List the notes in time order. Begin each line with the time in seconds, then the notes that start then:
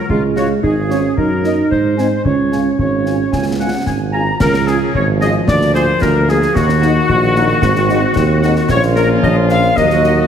0.09 C#2 G#3 F4, concert bass drum
0.36 G#3 C#4 F4 F#4 C#5, snare
0.63 G#1 D#4 G#4, concert bass drum
0.90 G#3 C#4 F4 C#5, snare
1.17 F#2 D#4 A#4, concert bass drum
1.44 A#3 D#4 D#5, snare
1.70 G#2 C5, concert bass drum
1.97 G#3 C4 D#4 G#5, snare
2.24 C#2 C#4 C#5, concert bass drum
2.51 G#3 C#4 F4 G#5, snare
2.78 G#1 C#5, concert bass drum
3.05 G#3 C#4 F4 G#5, snare
3.32 C#2 G#5, concert bass drum, snare
3.59 G#3 C#4 F4 F#5 G#5
3.86 G#1 G#5, concert bass drum, snare
4.12 G#3 C#4 F4 G#5 A#5
4.40 C#2 F3 C#4 A#4, concert bass drum, snare, crash
4.54 snare
4.66 G#3 C#4 F4 G#4, snare
4.93 G#1 C#5, concert bass drum
5.21 G#3 C#4 F4 G#4 D#5, snare
5.47 D2 A#3 D5, concert bass drum, snare
5.61 snare
5.74 F3 A#3 F4 G#4 C5, snare
6.01 D2 A#4, concert bass drum, snare
6.28 F3 A#3 F4 G#4, snare
6.42 snare
6.54 D#2 D#3 F#4, concert bass drum, snare
6.69 snare
6.81 F#3 A#3 D#4 F#4, snare
7.09 A#1, concert bass drum
7.35 F#3 A#3 D#4 F#4, snare
7.62 G#1 C4, concert bass drum, snare
7.75 snare
7.89 G#3 C4 D#4 F#4, snare
8.15 D#2, concert bass drum, snare
8.42 G#3 C4 D#4 F#4, snare
8.56 snare
8.69 A#1 F3 A#3 C#4 F4 C#5, concert bass drum, snare, crash
8.83 snare
8.96 A#4, snare
9.23 A#1 D#5, concert bass drum
9.50 F5, snare
9.76 D#2 D#3 F#3 A#3 F#4 D#5, concert bass drum, snare
9.90 snare
10.04 snare